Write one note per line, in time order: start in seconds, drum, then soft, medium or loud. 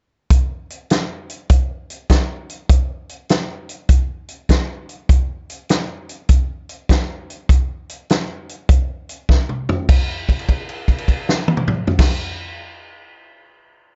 0.30 kick loud
0.30 closed hi-hat medium
0.70 closed hi-hat medium
0.90 snare loud
0.90 closed hi-hat medium
1.30 closed hi-hat medium
1.49 kick loud
1.49 closed hi-hat medium
1.90 closed hi-hat medium
2.10 kick medium
2.10 snare loud
2.10 closed hi-hat medium
2.49 closed hi-hat medium
2.69 kick loud
2.69 closed hi-hat medium
3.09 closed hi-hat medium
3.29 snare loud
3.29 closed hi-hat medium
3.69 closed hi-hat medium
3.89 kick loud
3.89 closed hi-hat medium
4.28 closed hi-hat medium
4.49 kick medium
4.49 snare loud
4.49 closed hi-hat medium
4.89 closed hi-hat medium
5.09 kick loud
5.09 closed hi-hat medium
5.50 closed hi-hat medium
5.69 snare loud
5.69 closed hi-hat medium
6.09 closed hi-hat medium
6.29 kick loud
6.29 closed hi-hat medium
6.69 closed hi-hat medium
6.89 kick medium
6.89 snare loud
6.89 closed hi-hat medium
7.30 closed hi-hat medium
7.49 kick loud
7.49 closed hi-hat medium
7.89 closed hi-hat medium
8.10 snare loud
8.10 closed hi-hat medium
8.49 closed hi-hat medium
8.69 kick loud
8.69 closed hi-hat medium
9.09 closed hi-hat medium
9.29 kick medium
9.29 snare medium
9.49 mid tom medium
9.69 floor tom medium
9.89 kick loud
9.89 crash medium
10.29 kick medium
10.29 crash soft
10.39 crash soft
10.49 kick medium
10.49 crash soft
10.69 crash soft
10.88 kick medium
10.88 crash soft
10.98 crash medium
11.08 kick medium
11.08 crash medium
11.29 snare medium
11.48 high tom medium
11.57 mid tom medium
11.68 mid tom loud
11.87 floor tom medium
11.99 kick loud
11.99 snare loud
11.99 crash loud